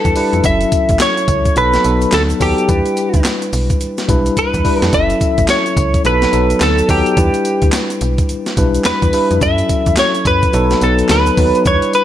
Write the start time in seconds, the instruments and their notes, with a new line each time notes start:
Already playing: tine electric piano G3 D4 E4 B4, clean electric guitar A4
0.05 fm bass E2, kick, closed hi-hat, shaker
0.16 tine electric piano G3 D4 E4 B4, open hi-hat, tambourine, shaker
0.33 fm bass F2, closed hi-hat, shaker
0.43 fm bass F#1, tine electric piano F#3 C#4 E4 A4, clean electric guitar E5, kick, closed hi-hat, tambourine, shaker
0.61 closed hi-hat, shaker
0.72 kick, closed hi-hat, tambourine, shaker
0.89 fm bass A1, kick, closed hi-hat, shaker
0.99 clean electric guitar C#5, snare, clap, closed hi-hat, tambourine, shaker
1.17 closed hi-hat, shaker
1.28 fm bass C#2, kick, closed hi-hat, tambourine
1.45 kick, closed hi-hat, shaker
1.56 fm bass B1, tine electric piano F#3 B3 D#4 A4, clean electric guitar B4, closed hi-hat, shaker
1.73 snare, closed hi-hat, shaker
1.84 fm bass B1, tine electric piano F#3 B3 D#4 A4, closed hi-hat, tambourine, shaker
2.01 closed hi-hat, shaker
2.12 fm bass D2, clean electric guitar A4, snare, clap, closed hi-hat, tambourine, shaker
2.29 closed hi-hat, shaker
2.40 fm bass D#2, tine electric piano F#3 B3 D#4 A4, clean electric guitar G4, kick, open hi-hat, tambourine, shaker
2.58 closed hi-hat, shaker
2.68 fm bass E2, tine electric piano G3 D4 E4 B4, kick, closed hi-hat, tambourine, shaker
2.86 closed hi-hat, shaker
2.97 closed hi-hat, tambourine, shaker
3.14 fm bass D2, kick, closed hi-hat, shaker
3.24 snare, clap, closed hi-hat, tambourine, shaker
3.42 closed hi-hat, shaker
3.53 fm bass B1, open hi-hat, tambourine, shaker
3.70 kick, closed hi-hat, shaker
3.81 closed hi-hat, shaker
3.98 snare, closed hi-hat, shaker
4.08 fm bass B1, tine electric piano G3 D4 E4 B4, kick, closed hi-hat, tambourine, shaker
4.26 closed hi-hat, shaker
4.37 fm bass E2, clean electric guitar B4, kick, closed hi-hat, shaker
4.54 fm bass E2, kick, closed hi-hat, shaker
4.64 tine electric piano G3 D4 E4 B4, kick, open hi-hat, shaker
4.82 fm bass F2, clean electric guitar A4, snare, closed hi-hat, shaker
4.93 fm bass F#1, tine electric piano F#3 C#4 E4 A4, clean electric guitar E5, kick, closed hi-hat, tambourine, shaker
5.10 closed hi-hat, shaker
5.21 kick, closed hi-hat, tambourine, shaker
5.38 fm bass A1, kick, closed hi-hat, shaker
5.48 clean electric guitar C#5, snare, clap, closed hi-hat, tambourine, shaker
5.66 closed hi-hat, shaker
5.77 fm bass C#2, kick, closed hi-hat, tambourine
5.94 kick, closed hi-hat, shaker
6.04 fm bass B1, tine electric piano F#3 B3 D#4 A4, clean electric guitar B4, closed hi-hat, shaker
6.22 snare, closed hi-hat, shaker
6.32 fm bass B1, tine electric piano F#3 B3 D#4 A4, closed hi-hat, tambourine, shaker
6.50 closed hi-hat, shaker
6.60 fm bass D2, clean electric guitar A4, snare, clap, closed hi-hat, tambourine, shaker
6.78 closed hi-hat, shaker
6.88 fm bass D#2, tine electric piano F#3 B3 D#4 A4, clean electric guitar G4, kick, open hi-hat, tambourine, shaker
7.06 closed hi-hat, shaker
7.16 fm bass E2, tine electric piano G3 D4 E4 B4, kick, closed hi-hat, tambourine, shaker
7.34 closed hi-hat, shaker
7.45 closed hi-hat, tambourine, shaker
7.62 fm bass D2, kick, closed hi-hat, shaker
7.72 snare, clap, closed hi-hat, tambourine, shaker
7.90 closed hi-hat, shaker
8.01 fm bass B1, closed hi-hat, tambourine
8.18 kick, closed hi-hat, shaker
8.29 closed hi-hat, shaker
8.46 snare, closed hi-hat, shaker
8.57 fm bass B1, tine electric piano G3 D4 E4 B4, kick, closed hi-hat, tambourine, shaker
8.75 closed hi-hat, shaker
8.84 fm bass E2, clean electric guitar B4, snare, clap, closed hi-hat, tambourine, shaker
9.02 fm bass E2, kick, closed hi-hat, shaker
9.13 tine electric piano G3 D4 E4 B4, open hi-hat, tambourine, shaker
9.30 fm bass F2, closed hi-hat, shaker
9.41 fm bass F#2, tine electric piano F#3 C#4 E4 A4, clean electric guitar E5, kick, closed hi-hat, tambourine, shaker
9.58 closed hi-hat, shaker
9.69 kick, closed hi-hat, tambourine, shaker
9.86 fm bass E2, kick, closed hi-hat, shaker
9.97 clean electric guitar C#5, snare, clap, closed hi-hat, tambourine, shaker
10.14 closed hi-hat, shaker
10.25 fm bass F#2, clean electric guitar B4, kick, closed hi-hat, tambourine
10.42 kick, closed hi-hat, shaker
10.53 fm bass B1, tine electric piano F#3 B3 D#4 A4, closed hi-hat, shaker
10.70 snare, closed hi-hat, shaker
10.81 fm bass B1, tine electric piano F#3 B3 D#4 B4, clean electric guitar A4, closed hi-hat, tambourine, shaker
10.98 closed hi-hat, shaker
11.09 fm bass D2, clean electric guitar B4, snare, clap, closed hi-hat, tambourine, shaker
11.26 closed hi-hat, shaker
11.37 fm bass D#2, tine electric piano F#3 B3 D#4 B4, kick, open hi-hat, tambourine, shaker
11.54 closed hi-hat, shaker
11.65 fm bass E2, tine electric piano G3 D4 E4 B4, clean electric guitar C#5, kick, closed hi-hat, tambourine, shaker
11.82 closed hi-hat, shaker
11.93 clean electric guitar B4, closed hi-hat, tambourine, shaker